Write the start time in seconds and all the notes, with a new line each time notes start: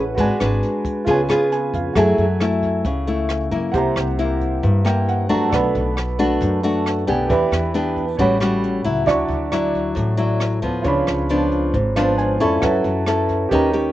Already playing: A1 E3 C#4 A4 B4 F#5 G#5
0.15 G#1 G#3 D4 F#4 B4, kick, closed hi-hat
0.19 B4 D5 G#5
0.40 G#1 D4 F#4 B4, cross-stick, closed hi-hat
0.63 closed hi-hat
0.85 kick, closed hi-hat
1.05 C#2 C#3 B3 F4 G#4 B4 C#5, kick, closed hi-hat
1.11 G#5
1.29 B3 F4 G#4 B5, cross-stick, closed hi-hat
1.52 G#5, closed hi-hat
1.74 F2 F5, kick, closed hi-hat
1.93 F#2 F#3 A3 E4 F#4 A4 E5, kick, cross-stick, closed hi-hat
1.97 G#4 G#5
2.18 F#2, closed hi-hat
2.40 A3 E4, cross-stick, closed hi-hat
2.62 kick, closed hi-hat
2.84 C#2 C#3, kick, closed hi-hat
3.07 A3 E4, closed hi-hat
3.29 cross-stick, closed hi-hat
3.51 F#2 A#3 E4, kick, closed hi-hat
3.72 C2 C3 G4 C5 F#5, kick, closed hi-hat
3.76 E5 A#5
3.96 C2, cross-stick, closed hi-hat
4.19 A#3 E4, closed hi-hat
4.41 kick, closed hi-hat
4.63 G2, kick, closed hi-hat
4.85 A#3 E4 G5, cross-stick, closed hi-hat
5.08 F#5, closed hi-hat
5.29 F#2 A3 D4 F#4 A#5, kick, closed hi-hat
5.50 B1 B2 A4 D5 F#5, kick, cross-stick, closed hi-hat
5.54 B4 B5
5.75 B1, closed hi-hat
5.97 cross-stick, closed hi-hat
6.19 A3 D4 F#4, kick, closed hi-hat
6.41 F#2, kick, closed hi-hat
6.63 A3 D4 F#4, closed hi-hat
6.86 cross-stick, closed hi-hat
7.07 B1 B3 D4 G4 A4 D5 F#5 G#5, kick, closed hi-hat
7.27 E2 E3 G4 B4 D5, kick, closed hi-hat
7.31 E5 B5
7.52 E2, cross-stick, closed hi-hat
7.74 B3 D4 G4, closed hi-hat
7.97 kick, closed hi-hat
8.17 A1 A2 G3 C#4 F#4 C#5 F#5, kick, closed hi-hat
8.22 B5
8.40 G3 C#4 F#4, cross-stick, closed hi-hat
8.64 closed hi-hat
8.84 C#2 F#3 E4, kick, closed hi-hat
9.05 D2 D3 D4 F#4 D5 E5, kick, cross-stick, closed hi-hat
9.11 C#6
9.28 D2, closed hi-hat
9.52 F#3 E4, cross-stick, closed hi-hat
9.74 kick, closed hi-hat
9.95 A1 A2, kick, closed hi-hat
10.17 F#3 E4, closed hi-hat
10.40 cross-stick, closed hi-hat
10.62 D2 F3 B3, kick, closed hi-hat
10.82 C#2 C#3 D4 F4 C#5, kick, closed hi-hat
10.88 B5
11.07 C#2, cross-stick, closed hi-hat
11.29 F3 B3 D4, closed hi-hat
11.51 kick, closed hi-hat
11.74 G#1 G#2, kick, closed hi-hat
11.96 F3 B3 D4 F5, cross-stick
12.18 G#5, closed hi-hat
12.39 F2 C#4 E4 F4 A4 C#5 D5 B5 C#6, kick, closed hi-hat
12.61 F#2 F#3 F#4 B4 C#5 E5, kick, cross-stick, closed hi-hat
12.66 A5
12.84 F#2, closed hi-hat
13.06 C#4 E4 A4, cross-stick, closed hi-hat
13.29 kick, closed hi-hat
13.49 D#2 D#3 C#4 G4 A#4 C#5 D#5, kick, closed hi-hat
13.53 B4 A#5
13.73 C#4 G4, closed hi-hat